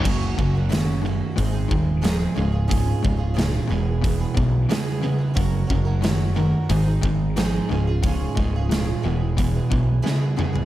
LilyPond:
<<
  \new Staff \with { instrumentName = "Twelve-string acoustic guitar" } { \time 4/4 \key ges \major \tempo 4 = 90 <ges, des ges bes des' ges'>8 <ges bes des' ges'>16 <ges bes des' ges'>16 <ges, des ges bes des' ges'>8 <ges bes des' ges'>8 <aes, ees aes c' ees' aes'>16 <aes c' ees' aes'>8. <aes, ees aes c' ees' aes'>16 <aes c' ees' aes'>16 <aes des' f' aes'>16 <des' f' aes'>16 | <des aes des' f' aes'>8 <aes des' f' aes'>16 <des' f' aes'>16 <des aes des' f' aes'>16 <des' f' aes'>16 <gis b e' gis'>8. <b e' gis'>8. <e gis b e' gis'>8 <gis b e' gis'>16 <b e' gis'>16 | <ges des' ges' bes'>8 <ges des' ges' bes'>16 <des' ges' bes'>16 <ges des' ges' bes'>8 <ges des' ges' bes'>8 <aes, ees aes c' ees' aes'>16 <aes c' ees' aes'>8. <aes, ees aes c' ees' aes'>8 <aes des' f' aes'>16 <des' f' aes'>16 | <des aes des' f' aes'>8 <aes des' f' aes'>16 <des' f' aes'>16 <des aes des' f' aes'>16 <des' f' aes'>16 <gis b e' gis'>8. <b e' gis'>8. <e gis b e' gis'>16 <b e' gis'>16 <gis b e' gis'>16 <b e' gis'>16 | }
  \new Staff \with { instrumentName = "Distorted electric guitar" } { \clef bass \time 4/4 \key ges \major <ges, des>8 <ges, des>8 <ges, ees>8 <ges, ees>8 <aes, ees>8 <aes, ees>8 <aes, f>8 <des, aes,>8 | <des, aes,>8 <des, aes,>8 <des, bes,>8 <e, b,>8 <e, b,>8 <e, b,>8 <e, des>8 <e, des>8 | <ges, des>8 <ges, des>8 <ges, ees>8 <ges, ees>8 <aes, ees>8 <aes, ees>8 <aes, f>8 <des, aes,>8 | <des, aes,>8 <des, aes,>8 <des, bes,>8 <e, b,>8 <e, b,>8 <e, b,>8 <e, des>8 <e, des>8 | }
  \new Staff \with { instrumentName = "Overdriven electric guitar" } { \clef bass \time 4/4 \key ges \major <ges, des>8 <ges, des>8 <ges, ees>8 <ges, ees>8 <aes, ees>8 <aes, ees>8 <aes, f>8 <des, aes,>8 | <des, aes,>8 <des, aes,>8 <des, bes,>8 <e, b,>8 <e, b,>8 <e, b,>8 <e, des>8 <e, des>8 | <ges, des>8 <ges, des>8 <ges, ees>8 <ges, ees>8 <aes, ees>8 <aes, ees>8 <aes, f>8 <des, aes,>8 | <des, aes,>8 <des, aes,>8 <des, bes,>8 <e, b,>8 <e, b,>8 <e, b,>8 <e, des>8 <e, des>8 | }
  \new Staff \with { instrumentName = "Picked electric bass" } { \clef bass \time 4/4 \key ges \major ges,,8 ges,,4. aes,,8 ees,,4 des,,8~ | des,,8 des,,4 e,,4 b,,8 r4 | ges,,8 ges,,4. aes,,8 aes,,4 des,,8~ | des,,8 des,,4 e,,4 b,,8 r4 | }
  \new DrumStaff \with { instrumentName = "Drums" } \drummode { \time 4/4 <cymc bd>8 bd8 <hho sn>4 <hho bd>8 bd8 <hho sn>4 | <hho bd>8 bd8 <hho sn>4 <hho bd>8 bd8 <hho sn>4 | <hho bd>8 bd8 <hho sn>4 <hho bd>8 bd8 <hho sn>4 | <hho bd>8 bd8 <hho sn>4 <hho bd>8 bd8 sn8 toml16 tomfh16 | }
>>